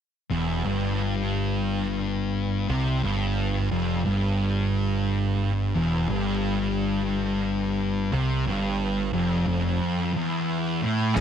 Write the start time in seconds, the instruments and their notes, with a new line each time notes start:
0.30 picked electric bass E1, distorted electric guitar E2
0.64 picked electric bass G1, distorted electric guitar G2
2.68 picked electric bass C2, distorted electric guitar C3
3.03 picked electric bass G1, distorted electric guitar G2
3.71 picked electric bass F1, distorted electric guitar F2
4.05 picked electric bass G1, distorted electric guitar G2
5.75 picked electric bass E1, distorted electric guitar E2
6.09 picked electric bass G1, distorted electric guitar G2
8.12 picked electric bass C2, distorted electric guitar C3
8.46 picked electric bass G1, distorted electric guitar G2
9.13 picked electric bass F1, distorted electric guitar F2
9.47 picked electric bass F1, distorted electric guitar F2
10.14 distorted electric guitar E2
10.82 distorted electric guitar A2
11.16 picked electric bass E1, distorted electric guitar E2, string machine E3 B3 G4, kick, crash